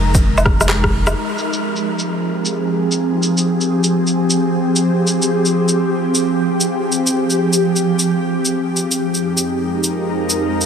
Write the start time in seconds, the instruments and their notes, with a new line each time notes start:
Already playing: sub bass F1, ambient pad G#3 D#4 A#4 A#5
0.15 kick, shaker
0.38 low woodblock, shaker
0.46 kick, cross-stick
0.61 cross-stick, low woodblock, shaker
0.69 cross-stick, clap
0.84 kick, cross-stick
1.07 cross-stick, low woodblock, shaker
1.15 ambient pad F3
1.29 ambient pad C4 G4 G#4
1.38 shaker
1.53 shaker
1.76 shaker
1.99 shaker
2.45 shaker
2.91 shaker
3.23 shaker
3.38 shaker
3.61 shaker
3.84 shaker
4.07 shaker
4.30 shaker
4.76 shaker
5.07 shaker
5.22 shaker
5.45 shaker
5.69 shaker
6.15 shaker
6.61 shaker
6.92 shaker
7.07 shaker
7.30 shaker
7.53 shaker
7.76 shaker
7.99 shaker
8.45 shaker
8.53 ambient pad F2
8.72 ambient pad D#4
8.77 shaker
8.84 ambient pad G#3
8.91 shaker
9.14 shaker
9.38 shaker
9.50 ambient pad A#4
9.69 ambient pad A#5
9.84 shaker
10.30 shaker
10.61 shaker